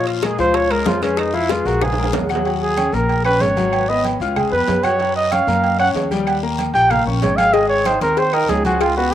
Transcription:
Already playing: A#2 F3 F4 F5
0.07 F4, high bongo, high conga, high timbale
0.23 G#3 G#4 A#4, high bongo, high conga, high timbale, low timbale, short guiro, claves
0.38 C#2 F3 F4 C5 F5, high bongo, high conga, short guiro
0.54 C#5, high bongo, high conga, high timbale, long guiro
0.71 G#3 G#4 A#4, high conga, high timbale, claves
0.86 F2 F4, high bongo, low bongo, high conga, low timbale, short guiro
1.02 G#3 C#4 G#4 B4, high bongo, high conga, high timbale, short guiro
1.17 D#4, high bongo, high conga, high timbale, long guiro, claves
1.33 F3 E4 F4 F5, high bongo, high conga
1.49 G#3 F4 G#4 B4, high bongo, high conga, high timbale, low timbale, short guiro
1.65 A#1 G#3 F#4 G#4 A#4, high bongo, high conga, short guiro
1.81 G#4, high bongo, high conga, low conga, high timbale, long guiro, claves
1.93 high timbale
1.98 G#3 G#4 A#4, high conga
2.03 high timbale
2.13 D#2, high bongo, low bongo, high conga, low timbale, short guiro
2.29 F#3 F#4 F#5, high bongo, high conga, short guiro, claves
2.35 low timbale
2.45 F#3 F#4 F#5, high conga, low agogo, long guiro
2.62 G#4, high conga
2.77 C#4 C#5 C#6, high conga, low timbale, low agogo, short guiro, claves
2.92 A#1 A#3 A#4 A#5, short guiro
3.09 high conga, low agogo, long guiro
3.25 C#4 B4 C#5 C#6, low agogo, claves
3.40 G#1 C#5, high conga, low timbale, short guiro
3.56 F#3 F#4 F#5, high conga, low agogo, short guiro
3.73 high conga, low agogo, long guiro, claves
3.89 B3 B4 D#5 B5, high conga
4.04 high conga, low timbale, low agogo, short guiro
4.20 C#2 F4 F5 F6, short guiro
4.36 G#3 G#4 G#5, high conga, low conga, low agogo, long guiro, claves
4.52 F2 B3 B4 B5
4.68 F#2, high conga, low timbale, low agogo, short guiro
4.83 F#4 C#5 F#5 F#6, high conga, low agogo, short guiro, claves
4.99 F#3 F#4 F#5, high conga, low agogo, long guiro
5.16 D#5, high conga
5.31 C#4 C#5 F5 C#6, high conga, low timbale, low agogo, short guiro, claves
5.47 F#2 A#3 A#4 A#5, short guiro
5.64 low agogo, long guiro
5.79 C#4 C#5 F#5 C#6, low agogo, claves
5.94 D#2, high conga, low timbale, short guiro
6.11 G3 G4 G5, high conga, low agogo, short guiro
6.27 high conga, low agogo, long guiro, claves
6.43 A#3 A#4 A#5, high conga
6.59 high conga, low timbale, low agogo, short guiro
6.74 A#1 G4 G5 G6, short guiro
6.90 A#3 A#4 F5 A#5, high conga, low conga, low agogo, long guiro, claves
7.06 A#1 C#4 A#4 C#5 C#6
7.22 G#1 C#5, high conga, low timbale, low agogo, short guiro
7.37 G#4 F5 G#5 G#6, high conga, low agogo, short guiro, claves
7.53 G#3 G#4 D#5 G#5, cowbell, low agogo, long guiro
7.69 C#5, high conga
7.85 D#4 C5 D#5 D#6, cowbell, high conga, low timbale, low agogo, short guiro, claves
8.01 D#2 C4 A#4 C5 C6, cowbell, short guiro
8.17 C5, cowbell, low agogo, long guiro
8.33 D#4 A#4 D#5 D#6, high conga, low agogo, claves
8.49 C#2 G#4, cowbell, high conga, low timbale, short guiro
8.65 G#3 F#4 G#4 G#5, high conga, low agogo, short guiro
8.81 F4, cowbell, low agogo, long guiro, claves
8.97 B3 F#4 B4 B5, high conga

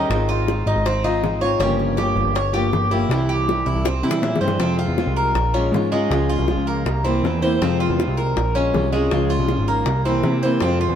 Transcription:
Already playing: C#4 D#4
0.10 G#1 G#3 C4 F4, high bongo
0.29 F4, high bongo
0.48 G#3 C4 F4, high bongo
0.66 G#1 D#4, high bongo
0.75 G#1
0.86 C4, muted nylon-string guitar stroke, high bongo
1.04 C4 D#4 F4, high bongo
1.24 G#3 C4 F4, high bongo, low bongo
1.41 C4 F4 C#5
1.59 G1 C#3 F3 A#3 C#4 F4 G4, high bongo
1.80 high bongo
1.97 F3 A#3 F4 G4, high bongo
2.15 G1, high bongo
2.25 G1
2.35 C#5, muted nylon-string guitar stroke, high bongo
2.53 F3 A#3 F4 G4, high bongo
2.73 A#3 F4 G4, high bongo, low bongo
2.91 F3 A#3 E4 F4 G4
3.09 C2 C3 E3 G3 C4 E4, high bongo
3.29 G4, high bongo
3.47 E3 G3 C4 E4, high bongo
3.66 C2 E4, high bongo
3.75 C2
3.85 C4, muted nylon-string guitar stroke, high bongo
4.03 C3 E3 G3 C4 E4
4.11 low bongo
4.22 A#2 E3 G3 C4 E4, low bongo
4.36 low bongo
4.41 G2 E3 G3 C4 E4 C5
4.48 low bongo
4.60 F2 C3 F3 G#3 C4 F4, high bongo
4.79 F4, high bongo
4.88 E2
4.97 F3 G#3 C4 F4, high bongo
5.07 C2
5.17 A#4, high bongo
5.35 A#1, muted nylon-string guitar stroke, high bongo
5.54 G#3 C#4 F4, high bongo
5.72 G#2 F3 G#3 C#4 F4, high bongo, low bongo
5.92 G#3 C#4 F4
6.10 C#2 C#3 F3 G#3 C#4 F4, high bongo
6.29 F4, high bongo
6.38 C2
6.48 F3 G#3 C#4 F4, high bongo
6.57 C#2
6.67 A#3, high bongo
6.86 C2, muted nylon-string guitar stroke, high bongo
7.04 E3 A#3 C4 E4, high bongo
7.23 E2 E3 A#3 C4 E4, high bongo, low bongo
7.42 E3 A#3 C4 E4 C5
7.62 F2 C3 F3 G#3 C4 F4, high bongo
7.80 F4, high bongo
7.90 E2
7.99 F3 G#3 C4 F4, high bongo
8.08 C2
8.17 A#4, high bongo
8.37 A#1, muted nylon-string guitar stroke, high bongo
8.55 G#3 C#4 F4, high bongo
8.73 C2 F3 G#3 C#4 F4, high bongo, low bongo
8.92 G#3 C#4 F4
9.11 C#2 C#3 F3 G#3 C#4 F4, high bongo
9.29 F4, high bongo
9.39 C2
9.48 F3 G#3 C#4 F4, high bongo
9.58 G#1
9.68 A#3, high bongo
9.86 C2, muted nylon-string guitar stroke, high bongo
10.05 E3 A#3 C4 E4, high bongo
10.23 C3 E3 A#3 C4 E4, high bongo, low bongo
10.43 E3 A#3 C4 E4 C5
10.61 F2 C3 F3 G#3 C4, high bongo
10.65 F4
10.81 F4, high bongo
10.89 E2

